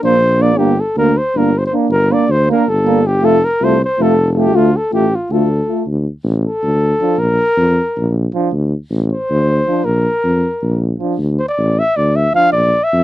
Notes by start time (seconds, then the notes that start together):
0.02 A#1 A#3 D4 C5
0.39 A#3 D4 D5
0.57 G1 A#3 D4 G4
0.80 A4
0.96 D2 A#3 D4 A#4
1.18 C5
1.35 G1 A#3 D4 A#4
1.58 C5
1.66 C5
1.73 A#3 D4
1.90 G1 A#4
2.10 A#3 D4 D5
2.28 D2 C5
2.49 A#3 D4 A#4
2.68 G1 A4
2.86 A#3 D4
3.07 G4
3.22 F1 A3 F4 A4
3.45 A#4
3.61 C2 A3 F4 C5
3.84 C5
3.99 F1 A3 F4 A4
4.32 A3 F4 A4
4.39 G4
4.53 D2 A3 F4
4.76 A4
4.92 A1 A3 F4 G4
5.15 F4
5.30 D2 A3 F4 A4
5.68 A3 F4
5.86 D2
6.24 A1
6.45 A4
6.63 D2
7.01 F3 D4
7.18 A#1 A#4
7.57 F2
7.96 A#1
8.34 F3 D4
8.52 D2
8.90 A1
9.12 C5
9.30 D2
9.67 F3 D4
9.85 A#1 A#4
10.24 F2
10.62 A#1
10.99 F3 D4
11.18 D2
11.39 C5
11.49 D5
11.58 A1
11.79 E5
11.96 D2 D5
12.16 E5
12.33 F3 D4 F5
12.52 A#1 D5
12.84 E5
12.93 F2